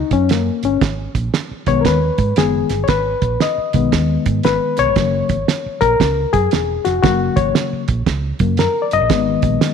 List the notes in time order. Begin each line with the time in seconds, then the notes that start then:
Already playing: D#4
0.11 F#2 C#4, kick, closed hi-hat
0.29 A#3, snare, closed hi-hat
0.63 G1 C#4, closed hi-hat
0.81 G#1, kick, snare, closed hi-hat
1.15 A#1, kick, closed hi-hat
1.34 snare, closed hi-hat
1.51 muted fingered electric bass stroke
1.66 B1 D#3 G#3 B3 C#5, kick, closed hi-hat
1.81 D#2 A#4, kick
1.85 B4, snare, closed hi-hat
2.18 G#2, kick, closed hi-hat
2.36 F#1 D#3 G#3 B3 G#4, snare, closed hi-hat
2.69 G1, snare, closed hi-hat
2.84 C#5, closed hi-hat
2.88 G#1 B4, kick, snare
3.22 A#1, kick, closed hi-hat
3.40 D#5, snare, closed hi-hat
3.58 muted fingered electric bass stroke
3.73 B1 D#3 G#3 B3, kick, closed hi-hat
3.92 D#2, kick, snare, closed hi-hat
4.26 G#2, kick, closed hi-hat
4.43 G#1 B4, snare, closed hi-hat
4.77 B1 C#5, snare, closed hi-hat
4.88 G#1
4.96 F#1 C#3 F#3 A#3, kick, snare, closed hi-hat
5.29 G#1, kick, closed hi-hat
5.48 snare, closed hi-hat
5.66 muted fingered electric bass stroke
5.81 A#1 A#4, kick, closed hi-hat
6.00 C#2, kick, snare, closed hi-hat
6.33 F#2 G#4, kick, closed hi-hat
6.51 E1, snare, closed hi-hat
6.85 F1 F#4, snare, closed hi-hat
7.03 F#1 C#3 F#3 A#3 F#4, kick, snare, closed hi-hat
7.36 G#1 C#5, kick, closed hi-hat
7.55 snare, closed hi-hat
7.73 muted fingered electric bass stroke
7.88 A#1, kick, closed hi-hat
8.06 C#2, kick, snare, closed hi-hat
8.39 F#2 C#3 F#3 A#3, kick, closed hi-hat
8.57 A#4, snare, closed hi-hat
8.82 D5
8.91 F#1 D#5, closed hi-hat
9.01 A#1
9.10 G#1 D#3 G#3 B3, kick, snare, closed hi-hat
9.42 A#1, kick, closed hi-hat
9.61 snare, closed hi-hat